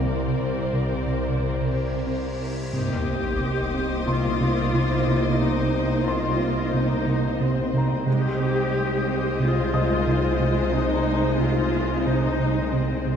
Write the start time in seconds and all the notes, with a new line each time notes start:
Already playing: C2 F5 F6
0.06 C3 C4 A#4 C5 D5, cymbal swell
0.40 C3
0.73 C3
1.07 C3
1.39 C3
1.73 C3
2.07 C4
2.40 C4
2.73 C2 C3 A#3 D#4 G4 C5 D#5 C6 D6 D#6, sub drop
3.07 C4
3.40 C3
3.74 C4
4.07 C3 F4 C6
4.40 C3
4.74 C3
5.07 C3
5.41 C3 D#4
5.73 C4
6.07 C3 F4 C6
6.40 C4
6.74 C3 D#4
7.07 C3
7.40 C3 C4
7.73 C3 A#5
8.06 C2 C3 G#3 D#4 G4 C5 D#5 C6 D#6 G6
8.40 C4
8.73 C3
9.07 C4
9.40 C3 F4
9.73 C3 D#5 D#6
10.07 C3
10.40 C3
10.73 C3 D#4
11.06 C4
11.40 C3 F4
11.73 C4
12.07 C3 D#4
12.40 C3
12.73 C3 C4
13.06 C3